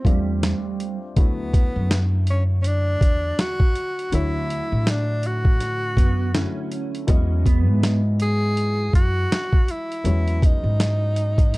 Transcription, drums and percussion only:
0.05 kick, closed hi-hat
0.43 snare, closed hi-hat
0.80 closed hi-hat
1.17 kick, closed hi-hat
1.54 kick, closed hi-hat
1.91 snare, closed hi-hat
2.27 closed hi-hat
2.64 closed hi-hat
3.01 kick, closed hi-hat
3.39 snare, closed hi-hat
3.60 kick
3.75 closed hi-hat
3.99 closed hi-hat
4.12 closed hi-hat
4.50 closed hi-hat
4.87 snare, closed hi-hat
5.23 closed hi-hat
5.45 kick
5.60 snare, closed hi-hat
5.97 kick, closed hi-hat
6.35 snare, closed hi-hat
6.72 closed hi-hat
6.95 closed hi-hat
7.08 kick, closed hi-hat
7.46 kick, closed hi-hat
7.83 snare, closed hi-hat
8.20 closed hi-hat
8.57 closed hi-hat
8.93 kick, closed hi-hat
9.32 snare, closed hi-hat
9.53 kick
9.68 closed hi-hat
9.92 closed hi-hat
10.05 closed hi-hat
10.28 closed hi-hat
10.42 kick, closed hi-hat
10.80 snare, closed hi-hat
11.16 closed hi-hat
11.38 kick, closed hi-hat
11.54 snare, closed hi-hat

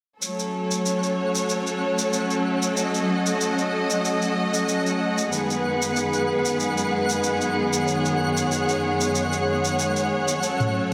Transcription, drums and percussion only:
0.22 shaker
0.39 shaker
0.71 shaker
0.86 shaker
1.03 shaker
1.35 shaker
1.49 shaker
1.67 shaker
1.99 shaker
2.13 shaker
2.30 shaker
2.62 shaker
2.77 shaker
2.95 shaker
3.26 shaker
3.41 shaker
3.59 shaker
3.90 shaker
4.05 shaker
4.22 shaker
4.54 shaker
4.69 shaker
4.86 shaker
5.18 shaker
5.33 shaker
5.50 shaker
5.82 shaker
5.96 shaker
6.13 shaker
6.45 shaker
6.60 shaker
6.78 shaker
7.09 shaker
7.24 shaker
7.41 shaker
7.73 shaker
7.88 shaker
8.05 shaker
8.37 shaker
8.52 shaker
8.69 shaker
9.01 shaker
9.15 shaker
9.33 shaker
9.65 shaker
9.79 shaker
9.96 shaker
10.28 shaker
10.43 shaker
10.60 mid tom, shaker

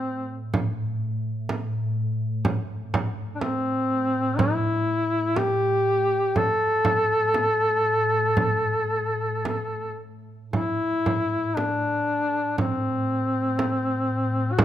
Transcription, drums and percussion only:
0.54 frame drum
1.49 frame drum
2.45 frame drum
2.94 frame drum
3.41 frame drum
4.39 frame drum
5.36 frame drum
6.36 frame drum
6.85 frame drum
7.34 frame drum
8.37 frame drum
9.45 frame drum
10.53 frame drum
11.06 frame drum
11.57 frame drum
12.58 frame drum
13.59 frame drum
14.59 frame drum

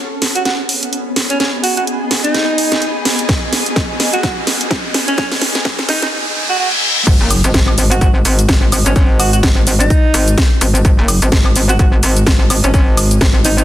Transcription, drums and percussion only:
0.22 snare, open hi-hat
0.35 closed hi-hat
0.45 snare, closed hi-hat
0.69 open hi-hat
0.83 closed hi-hat
0.93 closed hi-hat
1.16 snare, open hi-hat
1.30 closed hi-hat
1.40 snare, closed hi-hat
1.64 open hi-hat
1.77 closed hi-hat
1.87 closed hi-hat
2.11 snare, open hi-hat
2.25 closed hi-hat
2.34 snare, closed hi-hat
2.58 open hi-hat
2.72 snare, closed hi-hat
2.82 closed hi-hat
3.05 snare, open hi-hat
3.19 closed hi-hat
3.29 kick, snare, closed hi-hat
3.53 snare, open hi-hat
3.66 closed hi-hat
3.76 kick, snare, closed hi-hat
4.00 snare, open hi-hat
4.13 closed hi-hat
4.23 kick, snare, closed hi-hat
4.47 snare, open hi-hat
4.61 closed hi-hat
4.71 kick, snare, closed hi-hat
4.94 snare, open hi-hat
5.08 closed hi-hat
5.18 kick, snare, closed hi-hat
5.32 snare, open hi-hat
5.41 snare, open hi-hat
5.55 snare, closed hi-hat
5.65 kick, snare, closed hi-hat
5.79 snare
5.89 snare, open hi-hat
6.02 snare, closed hi-hat
7.07 kick, closed hi-hat, crash, shaker
7.31 open hi-hat, high woodblock, shaker
7.44 closed hi-hat, shaker
7.54 kick, snare, closed hi-hat, shaker
7.68 high woodblock
7.78 open hi-hat, shaker
7.91 closed hi-hat, shaker
8.01 kick, closed hi-hat, shaker
8.25 open hi-hat, shaker
8.39 closed hi-hat, shaker
8.49 kick, snare, closed hi-hat, shaker
8.72 open hi-hat, high woodblock, shaker
8.86 closed hi-hat, shaker
8.96 kick, closed hi-hat, shaker
9.20 open hi-hat, high woodblock, shaker
9.33 closed hi-hat, shaker
9.43 kick, snare, closed hi-hat, shaker
9.67 open hi-hat, shaker
9.80 closed hi-hat, shaker
9.90 kick, closed hi-hat, shaker
10.14 open hi-hat, shaker
10.28 closed hi-hat, shaker
10.38 kick, snare, closed hi-hat, shaker
10.61 open hi-hat, shaker
10.75 closed hi-hat, shaker
10.85 kick, closed hi-hat, shaker
11.08 open hi-hat, high woodblock, shaker
11.22 closed hi-hat, shaker
11.32 kick, snare, closed hi-hat, shaker
11.46 high woodblock
11.56 open hi-hat, shaker
11.69 closed hi-hat, shaker
11.79 kick, closed hi-hat, shaker
12.03 open hi-hat, shaker
12.17 closed hi-hat, shaker
12.27 kick, snare, closed hi-hat, shaker
12.50 open hi-hat, high woodblock, shaker
12.64 closed hi-hat, shaker
12.74 kick, closed hi-hat, shaker
12.97 open hi-hat, high woodblock, shaker
13.11 closed hi-hat, shaker
13.21 kick, snare, closed hi-hat, shaker
13.45 open hi-hat, shaker
13.58 closed hi-hat, shaker

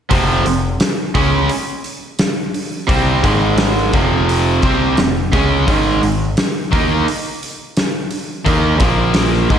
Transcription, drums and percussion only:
0.11 kick, open hi-hat
0.46 open hi-hat
0.80 snare, open hi-hat
1.15 kick, open hi-hat
1.49 open hi-hat
1.84 open hi-hat
2.19 snare, open hi-hat
2.54 open hi-hat
2.89 kick, open hi-hat
3.24 kick, open hi-hat
3.58 snare, open hi-hat
3.77 snare
3.93 kick, open hi-hat
4.29 open hi-hat
4.62 kick, open hi-hat
4.97 snare, open hi-hat
5.33 kick, open hi-hat
5.68 kick, open hi-hat
6.03 open hi-hat
6.37 snare, open hi-hat
6.73 kick, open hi-hat
7.08 open hi-hat
7.43 open hi-hat
7.77 snare, open hi-hat
8.11 open hi-hat
8.46 kick, open hi-hat
8.80 kick, open hi-hat
9.14 snare, open hi-hat
9.33 snare
9.50 kick, open hi-hat

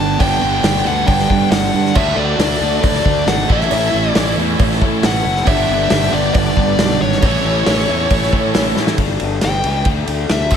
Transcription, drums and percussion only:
0.20 kick, open hi-hat, cowbell
0.63 snare, open hi-hat, cowbell
1.07 kick, open hi-hat, cowbell
1.19 snare
1.30 kick
1.52 snare, open hi-hat, cowbell
1.86 snare
1.95 kick, cowbell, crash
2.40 snare, open hi-hat, cowbell
2.84 kick, open hi-hat, cowbell
2.94 snare
3.06 kick
3.28 snare, open hi-hat, cowbell
3.50 kick
3.61 snare
3.71 open hi-hat, cowbell
4.15 snare, open hi-hat, cowbell
4.59 kick, open hi-hat, cowbell
4.72 snare
4.82 kick
5.03 snare, open hi-hat, cowbell
5.36 snare
5.46 kick, open hi-hat, cowbell
5.90 snare, open hi-hat, cowbell
6.34 kick, open hi-hat, cowbell
6.57 kick
6.79 snare, open hi-hat, cowbell
7.12 snare
7.22 kick, open hi-hat, cowbell
7.66 snare, open hi-hat, cowbell
8.10 kick, open hi-hat, cowbell
8.22 snare
8.33 kick
8.54 snare, open hi-hat, cowbell
8.76 snare
8.87 snare
8.98 kick, ride
9.20 ride
9.41 snare, ride
9.64 ride
9.85 kick, ride
10.07 ride
10.29 snare, ride
10.50 kick, crash

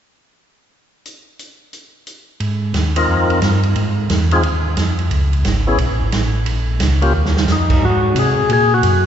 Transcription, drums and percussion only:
1.06 closed hi-hat
1.39 closed hi-hat
1.73 closed hi-hat
2.07 closed hi-hat
2.40 ride
2.74 snare, hi-hat pedal, ride
2.96 ride
3.30 ride
3.42 snare, hi-hat pedal, ride
3.63 ride
3.76 ride
4.10 snare, hi-hat pedal, ride
4.31 ride
4.43 ride
4.77 snare, hi-hat pedal, ride
4.99 ride
5.11 ride
5.33 ride
5.45 snare, hi-hat pedal, ride
5.78 ride
6.12 snare, hi-hat pedal, ride
6.46 ride
6.80 snare, hi-hat pedal, ride
7.02 ride
7.25 snare
7.37 snare
7.48 snare, hi-hat pedal
7.70 kick, crash
8.16 hi-hat pedal, ride
8.49 ride
8.83 hi-hat pedal, ride

